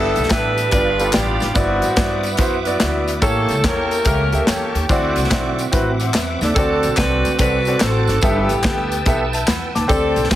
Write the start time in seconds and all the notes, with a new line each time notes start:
Already playing: G1 G2 B3 D4 E4 G4 A4 B4 E5 A5
0.16 B1, closed hi-hat, tambourine
0.23 snare
0.30 A1 B3 D4 E4 G4 A4 B4 E5, kick, snare, clap, closed hi-hat, tambourine
0.58 closed hi-hat, tambourine
0.71 G1 G2 B3 D4 F4 G4 B4 D5 F5 B5, kick, closed hi-hat, tambourine
0.99 B3 F4 G4 A4, closed hi-hat, tambourine
1.13 A1 B3 D4 F4 G4 D5, snare, clap, closed hi-hat, tambourine
1.40 G#1, snare, closed hi-hat, tambourine
1.54 G1 G2 B3 C4 E4 F#4 B4 D5 E5 F#5 D6, kick, closed hi-hat, tambourine
1.82 A1, closed hi-hat, tambourine
1.96 G2 B3 E4 F#4 D5, kick, snare, clap, closed hi-hat, tambourine
2.23 closed hi-hat, tambourine
2.37 F#2 B3 E4 F#4 C5, kick, closed hi-hat, tambourine
2.65 B3 E4 F#4 D5, closed hi-hat, tambourine
2.79 D2 B3 E4 F#4 D5, snare, clap, closed hi-hat, tambourine
3.08 closed hi-hat, tambourine
3.20 A1 A2 A#3 C#4 E4 G4 A4 C#5 G5 A5 C#6, kick, closed hi-hat, tambourine
3.49 C#2, closed hi-hat, tambourine
3.63 E2 A#3 C#4 G4 A4 A#4 C#5, kick, snare, clap, closed hi-hat, tambourine
3.91 closed hi-hat, tambourine
4.05 C#2 A#3 C#4 G4 A4 A#4 E5, kick, closed hi-hat, tambourine
4.32 D2 A#3 G4 A4 E5, closed hi-hat, tambourine
4.46 E2 A#3 C#4 G4 A4 C#5, snare, clap, closed hi-hat, tambourine
4.50 G4
4.75 D#2, closed hi-hat, tambourine
4.89 D2 D3 A3 C4 E4 F#4 D5 E5 F#5 D6, kick, closed hi-hat, tambourine
5.16 C2, closed hi-hat, tambourine
5.24 snare
5.31 B1 C4 E4 F#4 D5, kick, snare, clap, closed hi-hat, tambourine
5.59 closed hi-hat, tambourine
5.72 A1 C4 E4 F#4 B4, kick, closed hi-hat, tambourine
6.00 C5 F#5, closed hi-hat, tambourine
6.14 E2 B4 E5, snare, clap, closed hi-hat, tambourine
6.41 D#2 A4 D5, snare, closed hi-hat, tambourine
6.55 D2 D3 C4 F#4 A4 D5 A5 D6, kick, closed hi-hat, tambourine
6.83 B1, closed hi-hat, tambourine
6.97 C2 C4 F#4 A4 B4 D5, kick, snare, clap, closed hi-hat, tambourine
7.25 D2, closed hi-hat, tambourine
7.39 C2 C4 F#4 A4 B4 D5, kick, closed hi-hat, tambourine
7.65 C4 F#4 A4 D5, closed hi-hat, tambourine
7.80 A1 C4 F#4 A4 C5, snare, clap, closed hi-hat, tambourine
8.08 G#1, snare, closed hi-hat, tambourine
8.21 G1 G2 B3 E4 G4 A4 B4 E5 G5 E6, kick, closed hi-hat, tambourine
8.49 A1, closed hi-hat, tambourine
8.63 D2 B3 G4 A4 G5, kick, snare, clap, closed hi-hat, tambourine
8.92 closed hi-hat, tambourine
9.06 B1 B3 G4 A4 E5, kick, closed hi-hat, tambourine
9.33 E5 A5, closed hi-hat, tambourine
9.47 E2 F#5 B5, snare, clap, closed hi-hat, tambourine
9.75 D#2 A5 D6, snare, closed hi-hat, tambourine
9.88 D2 D3 C4 G4 A4 D5 D6, kick, closed hi-hat, tambourine
10.16 B1, closed hi-hat, tambourine
10.24 snare
10.30 A1 C4 G4 A4 B4 C5, kick, snare, clap, closed hi-hat, tambourine